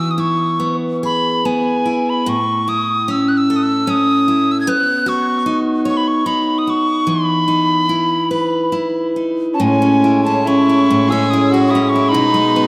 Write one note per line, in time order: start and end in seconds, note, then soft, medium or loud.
0.00 2.26 E3 medium
0.00 0.60 B3 medium
0.00 0.17 F#4 soft
0.00 1.03 B4 soft
0.00 0.12 E6 medium
0.11 0.21 D#6 soft
0.18 1.85 E4 soft
0.18 0.75 C#6 medium
0.60 1.43 B3 soft
1.03 2.35 G#4 soft
1.03 1.47 B5 medium
1.45 2.36 B3 soft
1.45 2.11 G#5 medium
1.85 2.67 E4 soft
2.09 2.30 B5 medium
2.26 4.67 A2 medium
2.26 2.70 C#6 medium
2.68 4.27 E4 soft
2.68 3.12 D#6 medium
3.08 3.87 C#4 soft
3.08 3.30 E6 medium
3.28 3.39 F#6 soft
3.37 3.58 E6 medium
3.50 4.76 A4 soft
3.56 3.64 D#6 medium
3.63 3.92 E6 medium
3.87 5.46 C#4 medium
3.87 4.53 D#6 medium
4.28 4.75 E4 soft
4.51 4.60 E6 medium
4.61 4.70 G#6 medium
4.67 8.17 B3 medium
4.67 5.10 F#6 medium
5.06 6.65 F#4 medium
5.06 5.60 C#6 medium
5.46 6.26 D#4 medium
5.85 7.15 C#5 medium
5.85 5.98 C#6 medium
5.97 6.09 B5 medium
6.08 6.28 C#6 medium
6.26 7.48 D#4 soft
6.26 6.60 B5 medium
6.58 6.71 D#6 medium
6.67 7.15 F#4 soft
6.67 7.11 C#6 medium
7.07 9.59 E3 medium
7.07 8.76 B5 medium
7.48 9.15 D#4 soft
7.89 8.72 E4 soft
8.31 9.70 B4 soft
8.72 9.81 E4 soft
9.16 9.69 D#4 soft
9.54 9.62 C#4 soft
9.54 9.62 A5 soft
9.60 10.89 A2 medium
9.60 12.11 A2 medium
9.60 12.67 G#3 medium
9.60 12.11 C#4 medium
9.60 10.25 C#4 medium
9.60 10.24 G#5 medium
9.82 10.46 C#4 soft
10.04 10.68 E4 soft
10.24 10.47 C#4 soft
10.24 11.53 G#4 soft
10.24 10.49 A5 medium
10.46 11.11 C#4 soft
10.46 11.10 E4 medium
10.46 11.12 C#6 medium
10.69 11.32 E4 soft
10.90 12.14 A2 medium
11.09 11.74 C#4 medium
11.09 11.30 G#4 medium
11.09 11.32 E6 medium
11.30 11.94 E4 medium
11.30 11.50 G#4 medium
11.30 11.50 D#6 medium
11.49 11.70 F#4 medium
11.49 11.52 G#4 soft
11.49 11.51 E6 medium
11.54 12.67 G#4 medium
11.67 11.91 E4 medium
11.67 11.72 F#4 medium
11.67 11.72 C#6 medium
11.67 11.91 D#6 medium
11.75 12.23 C#4 soft
11.89 12.13 E4 medium
11.89 12.10 C#6 medium
11.96 12.23 E4 soft
12.09 12.67 B2 medium
12.09 12.67 D#4 medium
12.09 12.67 B5 medium
12.14 12.67 B2 medium
12.34 12.67 G#3 soft
12.56 12.67 B3 medium